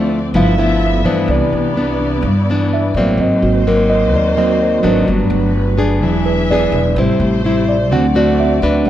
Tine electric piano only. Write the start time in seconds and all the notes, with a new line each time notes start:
Already playing: F3 C4 E4 C5
0.34 F3 A3 B3 E4 F5
0.59 E5
1.06 C5
1.31 D5
2.00 E3 B3 D4
2.73 E5
2.96 D5
3.19 F#3 A#3 C4 D#5
3.43 F#4
3.68 A#4
3.90 D#5
4.16 D5
4.37 F#3 A#3 C4 D#5
4.62 C5
4.86 B4
5.07 F#3 A3 B3
6.01 F#3 G#3 D4
6.26 B4
6.51 D5
6.74 B4
6.95 C3 G3 B4
6.99 C5
7.69 D5
7.90 E3 F#3 C4 F#5
8.17 D5
8.40 E5
8.82 D4 B4